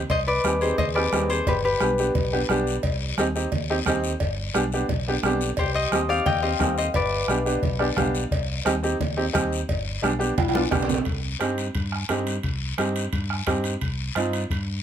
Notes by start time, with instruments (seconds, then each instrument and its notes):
0.10 fingered electric bass C2, harp C5 D#5, bombo low, cowbell, high conga, long guiro
0.27 harp B4 D5
0.44 fingered electric bass D#2, upright piano C4 D#4 G4, bombo rim, high conga, short guiro
0.61 upright piano C4 D#4 G4, harp G#4 C5, short guiro
0.78 fingered electric bass D#2, harp C5 D#5, bombo low, cowbell, high conga, low conga, long guiro
0.95 upright piano C4 D#4 G4, harp B4 D5, bombo rim
1.12 fingered electric bass D#2, upright piano C4 D#4 G4, bombo rim, high conga, low timbale, short guiro
1.30 harp G#4 C5, short guiro
1.47 fingered electric bass G1, harp G4 B4, bombo low, cowbell, high conga, low conga, long guiro
1.64 harp G4 B4
1.80 fingered electric bass B1, upright piano B3 D4 G4, bombo rim, high conga, short guiro
1.98 upright piano B3 D4 G4, short guiro
2.15 fingered electric bass B1, bombo low, cowbell, high conga, low conga, long guiro
2.33 upright piano B3 D4 G4
2.49 fingered electric bass B1, upright piano B3 D4 G4, bombo rim, high conga, short guiro
2.67 short guiro
2.83 fingered electric bass C2, bombo low, cowbell, high conga, long guiro
3.18 fingered electric bass D#2, upright piano C4 D#4 G4, bombo rim, high conga, short guiro
3.35 upright piano C4 D#4 G4, short guiro
3.52 fingered electric bass D#2, bombo low, cowbell, high conga, low conga, long guiro
3.70 upright piano C4 D#4 G4
3.86 fingered electric bass D#2, upright piano C4 D#4 G4, bombo low, bombo rim, high conga, low timbale, short guiro
4.04 short guiro
4.20 fingered electric bass G1, bombo low, cowbell, high conga, long guiro
4.54 fingered electric bass B1, upright piano B3 D4 G4, bombo rim, high conga, short guiro
4.72 upright piano B3 D4 G4, short guiro
4.89 fingered electric bass B1, bombo low, cowbell, high conga, low conga, long guiro
5.08 upright piano B3 D4 G4
5.23 fingered electric bass B1, upright piano B3 D4 G4, bombo rim, high conga, low timbale, short guiro
5.41 short guiro
5.57 fingered electric bass C2, harp G4 C5, bombo low, cowbell, high conga, long guiro
5.75 harp C5 D#5
5.92 fingered electric bass D#2, upright piano C4 D#4 G4, bombo rim, high conga, short guiro
6.09 upright piano C4 D#4 G4, harp D5 F5, short guiro
6.26 fingered electric bass D#2, harp D#5 G5, bombo low, cowbell, high conga, low conga, long guiro
6.42 upright piano C4 D#4 G4, harp C5 D#5
6.59 fingered electric bass D#2, upright piano C4 D#4 G4, bombo low, bombo rim, high conga, low timbale, short guiro
6.78 harp C5 D#5, short guiro
6.94 fingered electric bass G1, harp B4 D5, bombo low, cowbell, high conga, long guiro
7.28 fingered electric bass B1, upright piano B3 D4 G4, bombo rim, high conga, short guiro
7.45 upright piano B3 D4 G4, short guiro
7.63 fingered electric bass B1, bombo low, cowbell, high conga, low conga, long guiro
7.79 upright piano B3 D4 G4 D5, bombo rim
7.97 fingered electric bass B1, upright piano B3 D4 G4 F5, bombo low, bombo rim, high conga, low conga, short guiro
8.15 short guiro
8.31 fingered electric bass C2, bombo low, cowbell, high conga, long guiro
8.65 fingered electric bass D#2, upright piano C4 D#4 G4, bombo rim, high conga, short guiro
8.83 upright piano C4 D#4 G4, short guiro
9.00 fingered electric bass D#2, bombo low, cowbell, high conga, low conga, long guiro
9.17 upright piano C4 D#4 G4
9.33 fingered electric bass D#2, upright piano C4 D#4 G4, bombo low, bombo rim, high conga, short guiro
9.53 short guiro
9.69 fingered electric bass G1, bombo low, cowbell, high conga, long guiro
10.02 fingered electric bass B1, upright piano B3 D4 G4, bombo rim, high conga, short guiro
10.19 upright piano B3 D4 G4, short guiro
10.38 fingered electric bass B1, bombo low, cowbell, high conga, low conga, high timbale, long guiro
10.49 high timbale
10.54 upright piano B3 D4 F4, bombo rim, high conga
10.70 fingered electric bass B1, upright piano B3 D4 G4, bombo low, bombo rim, low conga, low timbale, short guiro
10.82 low timbale
10.89 low conga, short guiro
10.94 low timbale
11.05 fingered electric bass C2, bombo low, high conga, high timbale, long guiro
11.39 fingered electric bass G2, upright piano C4 D#4 G4, bombo rim, high conga, high timbale, short guiro
11.58 high timbale, short guiro
11.75 fingered electric bass G2, bombo low, high conga, high timbale, long guiro
11.92 bombo rim
12.09 fingered electric bass G2, upright piano C4 D#4 G4, bombo rim, high conga, high timbale, low timbale, short guiro
12.27 high timbale, short guiro
12.43 fingered electric bass C2, bombo low, high conga, high timbale, long guiro
12.78 fingered electric bass G2, upright piano C4 D#4 G4, bombo rim, high conga, high timbale, short guiro
12.96 high timbale, short guiro
13.13 fingered electric bass G2, bombo low, high conga, high timbale, long guiro
13.30 bombo rim
13.47 fingered electric bass G2, upright piano C4 D#4 G4, bombo low, bombo rim, high conga, high timbale, short guiro
13.64 high timbale, short guiro
13.81 fingered electric bass C2, bombo low, high conga, high timbale, long guiro
14.15 fingered electric bass G2, upright piano C4 D#4 F4, bombo rim, high conga, high timbale, short guiro
14.33 high timbale, short guiro
14.50 fingered electric bass G2, bombo low, high conga, high timbale, long guiro